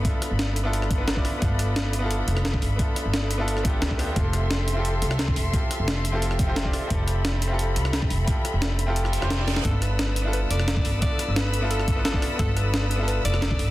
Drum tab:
HH |x-x-x-x-x-x-x-o-|x-x-x-x-x-x-x-o-|x-x-x-x-x-x-x-o-|x-x-x-x-x-x-x-o-|
SD |--r-o----r--o-r-|--r-o------ro---|--r-o----r--o-r-|--r-o------ro---|
BD |o---------o--o--|o------------o--|o---------o--o--|o------------o--|

HH |x-x-x-x-x-x-x-o-|x-x-x-x-x-x-x-o-|x-x-x-x-x-x-x-o-|x-x-x-x-x-x-x-o-|
SD |--r-o----r--o-r-|--r-o------ro---|--r-o----r-ro-oo|--r-o------ro---|
BD |o---------o--o--|o------------o--|o---------------|o------------o--|

HH |x-x-x-x-x-x-x-o-|x-x-x-x-x-x-x-o-|
SD |--r-o----r--o-r-|--r-o------ro---|
BD |o---------o--o--|o------------o--|